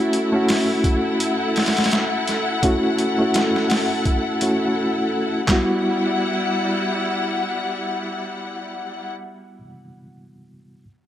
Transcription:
Already playing: A3 C#4 E4 F#4 A4 F#5
0.13 closed hi-hat
0.32 A3 C#4 E4 F#4
0.48 snare, open hi-hat
0.84 kick, closed hi-hat
1.20 closed hi-hat
1.56 snare, open hi-hat
1.66 snare, open hi-hat
1.77 snare, open hi-hat
1.84 snare, open hi-hat
1.91 snare, closed hi-hat
2.27 snare, closed hi-hat
2.63 A3 C#4 E4 F#4, kick, closed hi-hat
2.99 closed hi-hat
3.18 A3 C#4 E4 F#4
3.34 snare, closed hi-hat
3.56 snare
3.70 snare, open hi-hat
4.05 kick, closed hi-hat
4.41 A3 C#4 E4 F#4, closed hi-hat
5.47 G3 B3 E4 F#5, kick, snare, clap
5.52 F#4

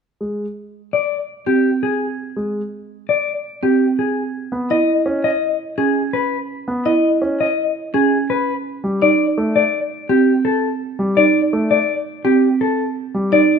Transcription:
0.21 G#3
0.93 D5
1.46 C4 G4
1.83 G#4
2.36 G#3
3.09 D5
3.63 C4 G4
3.99 G#4
4.52 B3
4.70 E4 D#5
5.06 C#4
5.24 D#5
5.78 C#4 G#4
6.13 B4
6.68 B3
6.86 E4 D#5
7.22 C#4
7.41 D#5
7.94 C#4 G#4
8.30 B4
8.84 G3
9.02 D#4 D5
9.38 A3
9.56 D5
10.09 C4 G4
10.45 A4
10.99 G3
11.17 D#4 D5
11.53 A3
11.71 D5
12.25 C4 G4
12.61 A4
13.14 G3
13.32 D#4 D5

